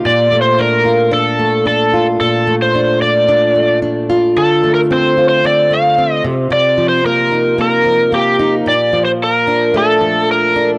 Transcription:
0.00 0.31 A#3 medium
0.00 0.11 D#4 medium
0.00 0.84 F4 medium
0.05 2.19 A#2 medium
0.05 0.41 D5 loud
0.32 1.39 A3 medium
0.41 0.60 C5 medium
0.59 1.11 D4 medium
0.59 1.13 A#4 medium
0.85 1.93 F4 medium
1.11 1.65 D4 medium
1.11 1.66 A4 loud
1.39 2.47 A3 medium
1.66 2.74 D4 medium
1.66 2.06 A4 medium
1.93 3.01 F4 medium
2.20 4.36 A#2 medium
2.20 2.54 A4 medium
2.47 3.55 A3 medium
2.62 3.01 C5 loud
2.75 3.28 D4 medium
3.02 4.09 F4 medium
3.02 3.78 D5 medium
3.28 3.82 D4 medium
3.56 4.42 A3 medium
3.82 4.90 D4 medium
4.10 5.17 F4 medium
4.36 6.24 D3 medium
4.36 4.74 A4 medium
4.64 5.69 A3 medium
4.74 4.79 A#4 medium
4.91 5.44 C4 medium
4.91 5.28 C5 medium
5.17 7.31 F4 medium
5.29 5.44 C5 medium
5.44 5.98 C4 medium
5.44 5.73 D5 loud
5.71 6.31 A3 medium
5.71 6.22 F5 medium
5.98 7.04 C4 medium
6.24 6.49 C3 medium
6.50 8.66 C3 medium
6.50 6.88 D5 loud
6.78 7.85 F3 medium
6.89 7.05 C5 medium
7.05 7.58 A#3 medium
7.05 7.60 A#4 loud
7.32 8.38 D#4 medium
7.58 8.12 A#3 medium
7.58 8.11 A#4 loud
7.85 8.92 F3 medium
8.12 9.74 A#3 medium
8.12 8.53 G4 medium
8.39 8.73 D#4 medium
8.66 10.78 A#2 medium
8.66 9.05 D5 loud
8.93 10.01 F3 medium
9.05 9.10 C5 medium
9.24 9.77 A#4 medium
9.47 10.56 D4 medium
9.74 10.78 A3 medium
9.74 10.31 A4 loud
10.01 10.78 F3 medium
10.31 10.69 A#4 medium
10.56 10.78 D4 medium

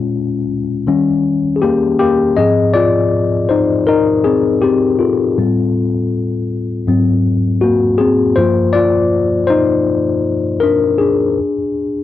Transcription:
0.00 0.45 A#2 soft
0.00 0.45 G#3 soft
0.00 0.46 C#4 medium
0.00 0.44 F4 medium
0.87 1.40 D#3 medium
0.87 1.41 G3 medium
0.87 1.41 C#4 medium
1.56 1.61 G#4 medium
1.62 1.97 A#3 medium
1.62 1.98 G4 medium
1.99 2.35 A#3 medium
1.99 2.38 G4 loud
2.37 3.45 G#2 medium
2.37 3.46 F3 soft
2.37 3.46 C4 medium
2.37 2.73 G#4 medium
2.37 2.75 D#5 loud
2.74 3.46 F4 medium
2.74 3.51 D5 medium
3.49 3.67 D#4 medium
3.49 3.66 C5 medium
3.87 4.05 D#4 medium
3.87 4.04 A#4 medium
4.24 4.42 C4 medium
4.24 4.41 G#4 medium
4.62 4.80 C4 medium
4.62 4.78 G4 medium
4.99 7.20 F4 medium
4.99 7.21 A4 medium
5.38 6.83 A2 soft
5.38 6.83 G3 soft
5.38 6.84 C4 medium
6.87 7.96 G#2 medium
6.87 7.96 F#3 soft
6.87 7.96 C4 medium
7.61 7.98 A#3 medium
7.61 8.00 F#4 medium
7.98 8.35 C4 medium
7.98 8.34 G#4 medium
8.36 8.91 G2 soft
8.36 8.91 F3 soft
8.36 8.91 A#3 medium
8.36 8.73 F4 medium
8.36 8.71 C5 loud
8.73 9.46 F4 medium
8.73 9.45 D5 loud
9.47 10.58 D#4 medium
9.47 10.64 C5 medium
10.60 10.98 D4 medium
10.60 10.96 A#4 medium
10.99 12.04 D4 medium
10.99 12.04 G#4 medium

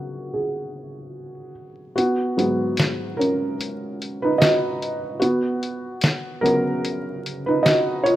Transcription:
0.00 1.92 C#3 medium
0.00 1.93 F#3 soft
0.00 1.93 B3 medium
0.00 0.36 F#4 medium
0.00 0.34 G#4 medium
0.00 1.98 A#4 medium
0.34 1.52 G#4 medium
1.96 2.36 B3 medium
1.96 3.14 F#4 medium
1.96 closed hi-hat medium
2.37 3.54 G#2 medium
2.37 3.55 F#3 soft
2.37 3.55 B3 medium
2.37 closed hi-hat medium
2.77 snare medium
2.77 closed hi-hat medium
3.17 4.20 C#4 medium
3.17 4.19 A#4 medium
3.21 closed hi-hat medium
3.61 closed hi-hat medium
4.02 closed hi-hat medium
4.22 4.29 D#4 medium
4.22 4.27 B4 medium
4.38 5.01 F#4 medium
4.38 5.00 D#5 medium
4.38 snare loud
4.38 closed hi-hat medium
4.82 closed hi-hat medium
5.20 6.39 B3 medium
5.20 6.38 F#4 medium
5.20 closed hi-hat medium
5.63 closed hi-hat medium
6.01 snare loud
6.01 closed hi-hat medium
6.41 7.60 C#3 soft
6.41 7.60 F#3 soft
6.41 7.60 B3 medium
6.41 7.44 C#4 medium
6.41 7.43 A#4 medium
6.46 closed hi-hat medium
6.85 closed hi-hat medium
7.26 closed hi-hat medium
7.46 7.63 D#4 medium
7.46 7.64 B4 medium
7.63 8.02 F#4 medium
7.63 8.05 D#5 medium
7.63 snare loud
7.63 closed hi-hat medium
8.04 8.15 F4 medium
8.04 8.13 C#5 medium
8.04 closed hi-hat medium

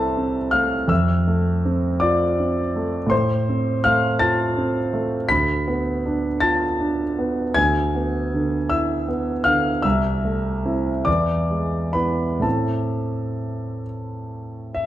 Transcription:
0.00 0.86 C2 medium
0.00 0.53 A3 soft
0.00 0.17 C4 soft
0.00 0.38 E4 soft
0.00 0.48 A4 medium
0.00 0.92 B4 medium
0.00 0.92 C5 medium
0.00 0.52 A5 medium
0.00 0.92 B5 medium
0.00 0.92 C6 medium
0.17 0.75 C4 soft
0.51 0.90 A3 soft
0.51 0.87 F5 medium
0.51 0.89 F6 medium
0.88 3.07 F2 medium
0.88 1.98 E5 medium
0.88 2.01 E6 medium
1.27 1.87 A3 soft
1.65 2.24 C4 medium
2.00 2.60 F4 soft
2.00 3.07 D5 medium
2.00 3.11 D6 medium
2.40 2.98 C4 soft
2.76 3.12 A3 soft
3.06 5.23 A2 medium
3.06 3.84 C6 medium
3.11 3.81 C5 medium
3.49 4.07 C4 soft
3.84 4.43 A3 soft
3.84 4.18 F5 medium
3.84 4.20 F6 loud
4.19 4.78 F4 soft
4.19 5.25 A5 medium
4.19 5.29 A6 medium
4.58 5.15 C4 medium
4.93 5.30 A3 soft
5.29 7.52 D2 medium
5.29 6.37 B5 medium
5.29 6.41 B6 loud
5.68 6.27 B3 soft
6.06 6.65 D4 medium
6.40 7.03 F4 soft
6.40 7.52 A5 medium
6.40 7.55 A6 medium
6.80 7.41 D4 soft
7.19 7.56 B3 soft
7.54 9.81 D2 medium
7.54 8.67 G#5 medium
7.54 8.70 G#6 loud
7.95 8.56 B3 soft
8.34 8.94 D3 medium
8.70 9.30 E4 soft
8.70 9.05 E5 medium
8.70 9.07 E6 medium
9.08 9.69 B3 soft
9.44 9.84 D3 soft
9.44 9.81 F5 medium
9.44 9.83 F6 medium
9.82 11.03 C2 medium
9.82 11.02 E5 medium
9.82 11.06 E6 medium
10.25 10.90 A3 soft
10.65 11.03 C4 soft
10.65 11.03 E4 medium
11.05 12.40 E2 medium
11.05 11.91 D5 medium
11.05 11.95 D6 medium
11.51 12.25 G#3 soft
11.93 12.40 B3 soft
11.93 12.40 E4 soft
11.93 12.40 B4 soft
11.93 12.43 B5 medium
12.40 14.86 A2 soft
12.40 14.86 A3 soft
12.40 14.86 C4 soft
12.40 13.84 A5 medium
12.44 14.86 E4 soft
12.44 13.81 A4 soft
14.75 14.86 E5 medium

